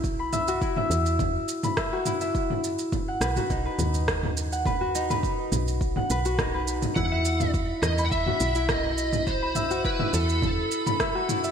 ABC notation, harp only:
X:1
M:4/4
L:1/16
Q:1/4=104
K:Bphr
V:1 name="Harp"
z b e F E e4 z2 b e F E e | z4 z f B F ^D B4 z2 f | B F ^D B4 z2 f B F D B3 | E e4 z2 b e F E E4 z |
z b e F E e4 z2 b e F E e |]